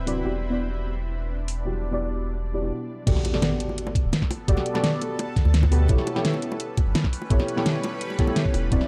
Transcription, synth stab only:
0.00 0.06 C4 medium
0.00 0.07 E4 medium
0.00 0.07 F#4 medium
0.00 0.07 B4 medium
0.00 0.08 D5 loud
0.06 0.22 C4 medium
0.06 0.22 E4 medium
0.06 0.23 F#4 medium
0.06 0.23 B4 medium
0.06 0.23 D5 loud
0.24 0.49 B3 medium
0.24 0.49 E4 medium
0.24 0.49 F#4 medium
0.24 0.49 G4 medium
0.24 0.49 D5 medium
0.50 1.63 B3 medium
0.50 1.63 E4 medium
0.50 1.64 F#4 medium
0.50 1.64 G4 medium
0.50 1.64 D5 medium
1.65 1.90 B3 medium
1.65 1.90 E4 medium
1.65 1.90 F#4 medium
1.65 1.90 G4 medium
1.65 1.90 D5 medium
1.91 2.51 B3 medium
1.91 2.52 E4 medium
1.91 2.52 F#4 medium
1.91 2.52 G4 medium
1.91 2.52 D5 loud
2.53 2.61 B3 medium
2.53 2.61 E4 medium
2.53 2.61 F#4 medium
2.53 2.61 G4 medium
2.53 2.61 D5 medium
2.62 2.71 B3 medium
2.62 2.71 E4 medium
2.62 2.72 F#4 medium
2.62 2.72 G4 medium
2.62 2.72 D5 medium
3.06 3.31 B3 medium
3.06 3.31 F#4 medium
3.06 3.31 G4 medium
3.06 3.32 A4 medium
3.06 3.32 D5 medium
3.32 4.45 B3 medium
3.32 4.46 F#4 medium
3.32 4.46 G4 medium
3.32 4.46 A4 medium
3.32 4.47 D5 medium
4.47 4.72 B3 medium
4.47 4.72 F#4 medium
4.47 4.73 G4 medium
4.47 4.73 A4 medium
4.47 4.73 D5 loud
4.74 5.34 B3 loud
4.74 5.34 F#4 medium
4.74 5.34 G4 medium
4.74 5.35 A4 medium
4.74 5.35 D5 loud
5.71 5.87 B3 loud
5.71 5.87 F#4 medium
5.71 5.87 G4 medium
5.71 5.87 A4 medium
5.71 5.87 B4 loud
5.89 6.14 B3 medium
5.89 6.14 E4 medium
5.89 6.14 G4 medium
5.89 6.14 A4 medium
5.89 6.14 C#5 medium
6.15 7.28 B3 medium
6.15 7.28 E4 medium
6.15 7.28 G4 medium
6.15 7.29 A4 medium
6.15 7.29 C#5 medium
7.30 7.55 B3 medium
7.30 7.55 E4 medium
7.30 7.55 G4 medium
7.30 7.55 A4 medium
7.30 7.55 C#5 loud
7.56 8.16 B3 loud
7.56 8.16 E4 medium
7.56 8.17 G4 medium
7.56 8.17 A4 medium
7.56 8.17 C#5 loud
8.19 8.25 B3 medium
8.19 8.26 E4 medium
8.19 8.26 G4 medium
8.19 8.26 A4 medium
8.19 8.26 C#5 medium
8.27 8.69 B3 medium
8.27 8.69 E4 medium
8.27 8.70 G4 medium
8.27 8.70 A4 medium
8.27 8.70 C#5 medium
8.71 8.88 C4 medium
8.71 8.88 E4 medium
8.71 8.88 F#4 medium
8.71 8.88 B4 medium
8.71 8.88 D5 medium

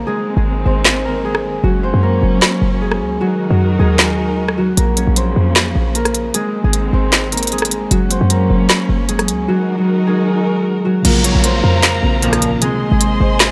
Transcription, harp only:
0.00 1.05 A#3 medium
0.00 0.66 C4 medium
0.00 0.74 F#4 medium
0.00 1.04 A#4 medium
0.00 0.65 C5 medium
0.07 0.36 G#3 medium
0.07 0.36 G#4 loud
0.37 1.24 G#3 medium
0.37 1.24 G#4 medium
0.66 1.84 C4 medium
0.66 1.83 C5 medium
1.05 2.03 A#3 medium
1.05 2.02 A#4 medium
1.25 1.69 G#3 medium
1.25 2.81 G#4 medium
1.64 3.20 F#3 medium
1.64 3.20 F#4 medium
1.83 4.84 C4 medium
1.83 3.81 C5 medium
2.03 4.78 A#3 medium
2.03 4.15 A#4 medium
2.81 3.26 G#3 medium
2.81 3.79 G#4 medium
3.21 3.50 F#3 medium
3.21 3.50 F#4 medium
3.50 4.57 F#3 medium
3.50 4.57 F#4 medium
3.79 4.82 G#3 medium
3.79 6.07 G#4 medium
4.58 4.82 F#3 medium
4.58 7.01 F#4 medium
4.78 5.95 A#3 medium
4.78 5.95 A#4 medium
4.97 5.23 C#4 medium
4.97 5.23 C#5 medium
5.17 6.93 C4 medium
5.17 6.93 C5 medium
5.95 7.33 A#3 medium
5.95 7.32 A#4 medium
6.34 6.64 G#3 medium
6.34 6.64 G#4 loud
6.64 7.52 G#3 medium
6.64 7.52 G#4 medium
6.93 8.11 C4 medium
6.93 8.10 C5 medium
7.32 8.31 A#3 medium
7.32 8.30 A#4 medium
7.52 7.96 G#3 medium
7.52 9.08 G#4 medium
7.91 9.48 F#3 medium
7.91 9.48 F#4 medium
8.11 11.11 C4 medium
8.11 10.09 C5 medium
8.30 11.05 A#3 medium
8.30 10.42 A#4 medium
9.09 9.53 G#3 medium
9.09 10.06 G#4 medium
9.48 9.78 F#3 medium
9.48 9.77 F#4 medium
9.78 10.85 F#3 medium
9.78 10.85 F#4 medium
10.07 11.10 G#3 medium
10.07 12.34 G#4 medium
10.85 11.10 F#3 medium
10.85 13.29 F#4 medium
11.05 12.23 A#3 medium
11.05 12.22 A#4 medium
11.24 11.50 C#4 medium
11.24 11.50 C#5 medium
11.44 13.21 C4 medium
11.44 13.20 C5 loud
12.22 13.51 A#3 medium
12.22 13.51 A#4 medium
12.62 12.91 G#3 medium
12.62 12.91 G#4 loud
12.92 13.51 G#3 medium
12.92 13.51 G#4 medium
13.21 13.51 C4 medium
13.21 13.51 C5 medium

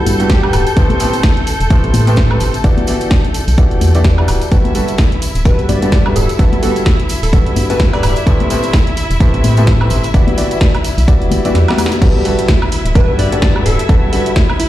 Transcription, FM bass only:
0.06 0.50 G2 loud
0.53 0.64 D1 loud
0.77 0.87 A1 loud
1.61 1.78 E1 medium
1.84 1.92 A1 medium
1.94 2.37 A2 loud
2.41 2.51 G1 loud
2.64 2.75 E1 loud
3.48 3.66 B1 medium
3.71 3.79 E1 medium
3.81 4.25 E2 loud
4.28 4.39 D1 loud
4.52 4.62 G1 medium
5.35 5.53 D1 medium
5.59 5.67 G1 medium
5.69 6.12 G2 loud
6.16 6.26 D1 loud
6.39 6.50 G1 loud
7.23 7.41 D1 medium
7.46 7.54 G1 medium
7.56 8.00 G2 loud
8.03 8.14 D1 loud
8.27 8.37 A1 loud
9.11 9.28 E1 loud
9.34 9.42 A1 medium
9.44 9.87 A2 loud
9.91 10.01 G1 loud
10.14 10.25 E1 loud
10.98 11.16 B1 medium
11.21 11.29 E1 medium
11.31 11.42 G1 medium
11.55 11.65 E2 loud
12.02 12.12 G1 loud
12.85 13.03 D1 medium
13.09 13.17 G1 medium
13.19 13.62 G2 loud
13.66 13.76 D1 loud
13.89 14.00 G1 loud

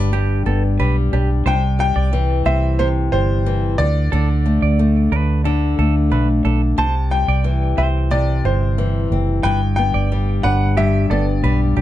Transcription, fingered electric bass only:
0.00 0.42 G1 medium
0.46 0.77 G1 medium
0.80 1.10 B1 medium
1.13 1.44 B1 medium
1.46 1.92 C2 medium
1.96 2.42 C2 medium
2.46 3.08 C2 medium
3.12 3.75 G1 medium
3.79 4.09 D2 medium
4.13 4.58 D2 medium
4.62 5.08 D2 medium
5.12 5.74 D2 medium
5.79 6.09 D2 medium
6.12 6.42 B1 medium
6.45 6.76 B1 medium
6.78 7.24 C2 medium
7.28 7.74 C2 medium
7.78 8.40 C2 medium
8.44 9.07 G1 medium
9.11 9.42 F#1 medium
9.44 9.90 G1 loud
9.94 10.40 G1 medium
10.44 11.07 G1 medium
11.10 11.41 G1 medium
11.44 11.74 B1 medium
11.77 11.81 B1 medium

